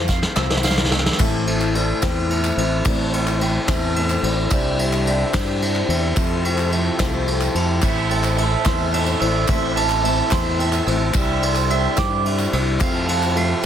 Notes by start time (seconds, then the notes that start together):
Already playing: F2 A5
0.08 A3 C4 E4 C5 F5, kick, snare, tambourine
0.23 snare, clap
0.35 C2 F3 A3 C4 E4 C5 E6, snare, clap
0.49 C4 E4 C5, snare, clap
0.57 snare
0.63 F5, snare, tambourine
0.70 snare
0.77 C4 E4 C5, snare, clap
0.84 snare
0.91 A3 C4 E4 C5 E6, snare
0.99 snare
1.06 snare
1.13 snare
1.18 A1 A2 E3 A3 C4 E4 A4 C5 E5, kick, clap, crash, tambourine
1.34 clap
1.46 A3 C4 E4 C5 E5, ride
1.61 clap, tambourine
1.74 A3 C4 E4 C5 D5, clap, ride
2.01 E2 A2 E3 A3 C4 E4 C5 G5, kick, snare, clap, ride, tambourine
2.17 clap
2.29 A3 C4 E4 C5 E5, ride
2.44 clap, tambourine
2.56 A1 A3 C4 E4 C5 E5, ride
2.84 A1 A2 E3 A3 C4 E4 C5 D5, kick, clap, ride, tambourine
3.00 clap
3.13 A3 C4 E4 C5 E5, ride
3.27 clap, tambourine
3.40 A3 C4 E4 C5 G5, clap, ride
3.68 E2 A2 E3 A3 C4 E4 C5 E5, kick, snare, clap, ride, tambourine
3.95 A3 C4 E4 C5 E5, ride
4.09 clap, tambourine
4.22 A1 A3 C4 E4 C5 D5, ride
4.50 C2 C3 E3 G3 D4 E4 G4 C5 E5, kick, clap, ride, tambourine
4.66 clap
4.78 G3 D4 E4 C5 E5, ride
4.92 clap, tambourine
5.06 G3 D4 E4 C5 E5, clap, ride
5.33 G2 C3 E3 G3 D4 E4 C5, kick, snare, clap, ride, tambourine
5.48 clap
5.61 G3 D4 E4 C5 E5, ride
5.75 clap
5.88 E2 G3 D4 E4 C5 E5, ride
6.16 F1 F2 F3 A3 C4 E4 A4 C5 E5, kick, clap, ride, tambourine
6.31 clap
6.44 F3 C4 E4 A4 E5, clap, ride
6.58 clap, tambourine
6.70 F3 A3 C4 E4 A4 C5 E5, ride
6.86 clap
6.99 C2 F3 A3 C4 E4 A4 C5 F5, kick, snare, clap, ride, tambourine
7.13 clap, tambourine
7.26 F3 C4 E4 A4 E5, ride, tambourine
7.40 clap, tambourine
7.54 F2 F3 C4 E4 A4 C5 E5, ride
7.81 A1 A2 E3 A3 C4 E4 C5 E5, kick, clap, ride, tambourine
7.96 clap
8.09 A3 C4 E4 C5 G5 A5, ride
8.24 clap, tambourine
8.37 A3 C4 E4 C5 E5, clap, ride
8.65 E2 A2 E3 A3 C4 E4 C5 E5 C6, kick, snare, clap, ride, tambourine
8.80 clap
8.92 A3 C4 E4 C5 E5, ride
9.06 tambourine
9.20 A1 A3 C4 E4 C5 D5 E6, ride
9.48 A1 A2 E3 A3 C4 E4 C5 E5, kick, clap, ride, tambourine
9.63 clap
9.76 A3 C4 E4 C5 E5 A5, ride
9.89 clap, tambourine
10.03 A3 C4 E4 C5 E5, clap, ride
10.30 E2 A2 E3 A3 C4 E4 C5 C6, kick, snare, clap, ride, tambourine
10.45 clap
10.58 A3 C4 E4 C5 E5 G5, ride
10.73 clap, tambourine
10.86 A1 A3 C4 E4 C5 E5 E6, ride
11.13 C2 C3 E3 G3 D4 E4 G4 C5 E5, kick, clap, ride, tambourine
11.28 clap
11.42 G3 D4 E4 C5 E5 C6, ride
11.55 clap, tambourine
11.68 G3 D4 E4 C5 E5, clap, ride
11.96 G2 C3 E3 G3 D4 E4 C5 G5 D6, kick, snare, clap, ride, tambourine
12.11 clap
12.25 G3 D4 E4 C5 E5, ride
12.38 clap, tambourine
12.51 C2 G3 D4 E4 C5 E5 E6, ride
12.79 F1 F2 F3 A3 C4 E4 A4 C5 E5 F5, kick, clap, ride, tambourine
12.94 tambourine
13.08 F3 C4 E4 A4 E5 A5, ride
13.22 clap, tambourine
13.35 F3 A3 C4 E4 A4 C5 E5 F5, ride
13.62 C5